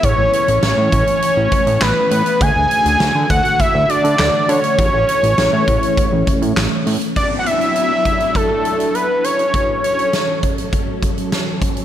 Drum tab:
HH |x-xxx-xxx-xxx-xx|x-xxx-xxx-xxx-xx|x-xxx-xxx-xxx-ox|x-xxx-xxx-xxx-xx|
CP |------------x---|------------x---|------------x---|----------------|
SD |----o-------o---|----o-------o---|----o-------o---|----------------|
BD |o-----o---o-----|o-----o-o-------|o-----o-o-o-----|o-----o-o-------|

HH |x-xxx-xxx-xxx-xx|
CP |----------------|
SD |----o-------o---|
BD |o-----o-o-o---o-|